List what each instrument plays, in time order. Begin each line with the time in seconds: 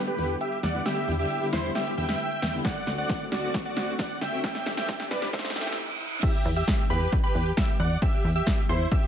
Already playing: string section D3 G3 B3 E4, riser
0.07 supersaw synth G4 B4, closed hi-hat
0.18 analog synth bass E2, string section D3 G3 B3 E4, open hi-hat
0.30 closed hi-hat
0.41 supersaw synth G4 E5, closed hi-hat
0.52 closed hi-hat
0.63 analog synth bass E2, supersaw synth D5 F#5, snare, open hi-hat
0.74 string section D3 G3 B3 E4, closed hi-hat
0.86 string section D3 G3 B3 E4, supersaw synth G4 E5, snare, closed hi-hat
0.97 closed hi-hat
1.08 analog synth bass E2, string section D3 G3 B3 E4, open hi-hat
1.19 string section D3 G3 B3 E4, supersaw synth G4 E5, closed hi-hat
1.30 closed hi-hat
1.42 string section D3 G3 B3 E4, closed hi-hat
1.53 analog synth bass E2, supersaw synth E4 C5, snare, open hi-hat
1.64 string section D3 G3 B3 E4, closed hi-hat
1.75 string section D3 G3 B3 E4, supersaw synth G4 E5, snare, closed hi-hat
1.86 closed hi-hat
1.98 analog synth bass E2, string section D3 G3 B3 E4, supersaw synth E5 G5, open hi-hat
2.09 snare, closed hi-hat
2.20 closed hi-hat
2.31 closed hi-hat
2.42 analog synth bass E2, snare, open hi-hat
2.54 string section D3 G3 B3 E4, closed hi-hat
2.65 string section D3 A3 C4 F#4, supersaw synth D5 F#5, kick, snare, closed hi-hat
2.76 closed hi-hat
2.87 analog synth bass D2, string section D3 A3 C4 F#4, snare, open hi-hat
2.98 string section D3 A3 C4 F#4, supersaw synth D5 F#5, closed hi-hat
3.10 kick, snare, closed hi-hat
3.21 string section D3 A3 C4 F#4, closed hi-hat
3.32 analog synth bass D2, supersaw synth F#4 D5, snare, open hi-hat
3.43 string section D3 A3 C4 F#4, closed hi-hat
3.54 string section D3 A3 C4 F#4, kick, snare, closed hi-hat
3.65 supersaw synth F#4 D5, closed hi-hat
3.77 analog synth bass D2, string section D3 A3 C4 F#4, snare, open hi-hat
3.88 closed hi-hat
3.99 supersaw synth D5 F#5, kick, snare, closed hi-hat
4.10 closed hi-hat
4.21 analog synth bass D2, supersaw synth E5 G5, snare, open hi-hat
4.33 string section D3 A3 C4 F#4, closed hi-hat
4.44 string section E3 A3 C4 G4, supersaw synth E5 G5, kick, snare, closed hi-hat
4.55 snare, closed hi-hat
4.66 analog synth bass C2, string section E3 A3 C4 G4, snare, open hi-hat
4.77 string section E3 A3 C4 G4, supersaw synth E5 G5, snare
4.89 kick, snare, closed hi-hat
5.00 string section E3 A3 C4 G4, snare, closed hi-hat
5.11 analog synth bass C2, supersaw synth B4 D5, snare, open hi-hat
5.22 string section E3 A3 C4 G4, snare, closed hi-hat
5.33 string section E3 A3 C4 G4, supersaw synth C5 E5, kick, snare, closed hi-hat, reverse cymbal
5.39 snare
5.45 snare, closed hi-hat
5.50 snare
5.56 analog synth bass C2, string section E3 A3 C4 G4, supersaw synth E5 G5, snare, open hi-hat
5.61 snare
5.67 snare
5.72 snare
6.23 supersaw synth G4 E5, synth pluck E6, kick, closed hi-hat, crash
6.34 closed hi-hat
6.45 analog synth bass E2, open hi-hat
6.56 supersaw synth G4 E5, synth pluck E6, closed hi-hat
6.68 kick, snare, closed hi-hat
6.79 closed hi-hat
6.90 analog synth bass E2, supersaw synth G4 B4, synth pluck B5, open hi-hat
7.01 closed hi-hat
7.12 kick, closed hi-hat
7.24 supersaw synth G4 B4, synth pluck B5, closed hi-hat
7.35 analog synth bass E2, open hi-hat
7.46 closed hi-hat
7.57 supersaw synth G4 E5, synth pluck E6, kick, snare, closed hi-hat
7.68 closed hi-hat
7.80 analog synth bass E2, supersaw synth D5 F#5, synth pluck F#6, open hi-hat
7.91 closed hi-hat
8.02 supersaw synth G4 E5, synth pluck E6, kick, closed hi-hat
8.13 closed hi-hat
8.24 analog synth bass E2, open hi-hat
8.36 supersaw synth G4 E5, synth pluck E6, closed hi-hat
8.47 kick, snare, closed hi-hat
8.58 closed hi-hat
8.69 analog synth bass E2, supersaw synth E4 C5, synth pluck C6, open hi-hat
8.80 closed hi-hat
8.92 supersaw synth G4 E5, synth pluck E6, kick, closed hi-hat
9.03 closed hi-hat